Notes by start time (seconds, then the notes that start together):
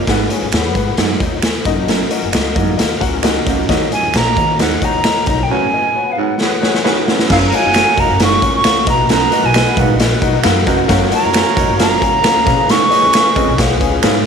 0.07 G#1 G#2 G#4 B4 F#5, kick, snare, closed hi-hat
0.30 C#4 G#4 B4 C#5, closed hi-hat
0.42 G#1
0.52 D#2 B3 G#4 B4 C#5, finger snap, snare, closed hi-hat
0.75 G#2 G#4 B4 F#5, kick, closed hi-hat
0.97 F#2 G#2 A#4 F#5, snare, closed hi-hat
1.20 D#2 D#4 C#5 A#5, kick, closed hi-hat
1.42 B4 G#5, finger snap, snare, closed hi-hat
1.65 F#1 D#4 F#4 A#4 D#5, kick, snare, closed hi-hat
1.88 F#2, snare, closed hi-hat
2.11 C#4 F#4 A#4 D#5, closed hi-hat
2.22 F#1
2.32 C#2 A#3 F#4 A#4 D#5, finger snap, snare, closed hi-hat
2.55 F#2 G#2 F#4 A#4 D#5, kick, closed hi-hat
2.77 D#2 A#3 F#4 A#4 D#5, snare, closed hi-hat
3.00 C#2 C#4 F#4 A#4 F#5, kick, closed hi-hat
3.23 D#2 C#4 F#4 A#4 D#5, finger snap, snare, closed hi-hat
3.45 C#2 F#2 A#3 F#4 A#4 D#5, kick, snare, closed hi-hat
3.69 D#2 D#3 F#4 C#5 D#5, kick, snare, closed hi-hat
3.91 C#4 F#4 C#5 D#5 G#5, closed hi-hat
4.03 D#2
4.14 A#1 A#3 F#4 C#5 D#5 A#5, finger snap, snare, closed hi-hat
4.37 D#3 F#4 C#5 D#5, kick, closed hi-hat
4.59 D#2 G#2 F#4 C#5 D#5 F#5, snare, closed hi-hat
4.82 D#2 D#4 F#4 C#5 D#5 A#5, kick, closed hi-hat
5.04 F#4 C#5 D#5, finger snap, snare, closed hi-hat
5.26 B1 D#4 F#4 C#5 D#5 A#5, kick, snare, closed hi-hat
5.43 G5
5.50 F#2 C#3 F#4 B4 C#5 G#5
5.72 C#4 F#4 B4 D#5
5.95 B3 F#4 B4 C#5
6.12 F5
6.17 G#2 F#4 B4 C#5 F#5
6.40 B3 F#4 G#4 B4 C#5, snare
6.62 C#4 F#4 G#4 B4 C#5, snare
6.74 snare
6.84 D#2 C#4 F#4 G#4 B4 C#5, snare
7.07 F#2 B3 F#4 B4 C#5, snare
7.19 snare
7.30 F#1 F#2 A#3 F#4 A#4 C#5 F5, kick, snare, crash
7.47 A#5
7.52 D#4 F#4 A#4 C#5 F5 G#5, closed hi-hat
7.64 F#1
7.74 C#4 F#4 A#4 C#5 F5, finger snap, snare, closed hi-hat
7.97 F1 D#4 F#4 A#4 C#5 F5 A#5, kick, closed hi-hat
8.09 F#1
8.20 G#2 F#4 A#4 C#5 F5 C#6, snare, closed hi-hat
8.42 C#2 C#4 F#4 A#4 C#5 F#5, kick, closed hi-hat
8.56 C#6
8.64 C#2 A#3 F#4 A#4 C#5 F5, finger snap, snare, closed hi-hat
8.86 B1 B2 D#4 F#4 B4 D#5 A#5, kick, snare, closed hi-hat
9.09 F#2 A#5, snare, closed hi-hat
9.32 A#3 F#4 A#4 B4 D#5, closed hi-hat
9.43 B1 G#5
9.54 B3 F#4 A#4 B4 D#5, finger snap, snare, closed hi-hat
9.77 B1 G#2 F#4 A#4 B4 F5 F#5, kick, closed hi-hat
9.88 A#1
9.99 C#4 F#4 A#4 B4 D#5, snare, closed hi-hat
10.22 B1 D#4 F#4 A#4 B4 D#5, kick, closed hi-hat
10.44 D#2 F#2 F#4 A#4 B4 F5, finger snap, snare, closed hi-hat
10.66 F1 F#2 F#4 A#4 B4 D#5, kick, snare, closed hi-hat
10.88 F#1 F#2 F#4 A#4 C#5 F5, kick, snare, closed hi-hat
11.10 D#4 F#4 A#4 C#5 F#5 A#5, closed hi-hat
11.23 F#1
11.33 C#4 F#4 A#4 C#5 F5, finger snap, snare, closed hi-hat
11.56 F1 D#4 F#4 A#4 C#5 F#5, kick, closed hi-hat
11.68 F#1
11.77 A#2 F#4 A#4 C#5 F5 A#5, snare, closed hi-hat
12.00 C#2 C#4 F#4 A#4 C#5 F5, kick, closed hi-hat
12.22 C#2 A#3 F#4 A#4 C#5 F5, finger snap, snare, closed hi-hat
12.46 C#3 G#4 B4 C#5 D#5 F5, kick, snare, closed hi-hat
12.69 G#2 C#6, snare, closed hi-hat
12.90 A#3 G#4 B4 C#5 D#5, closed hi-hat
13.03 C#2
13.13 C#4 G#4 B4 C#5 F5, finger snap, snare, closed hi-hat
13.36 C#2 F2 G#4 B4 C#5 D#5, kick, closed hi-hat
13.48 B1
13.58 B3 G#4 B4 C#5 F5, kick, snare, closed hi-hat
13.81 C#2 C#4 G#4 B4 C#5 F5, kick, closed hi-hat
14.03 G#2 G#4 B4 C#5 F5, finger snap, snare, closed hi-hat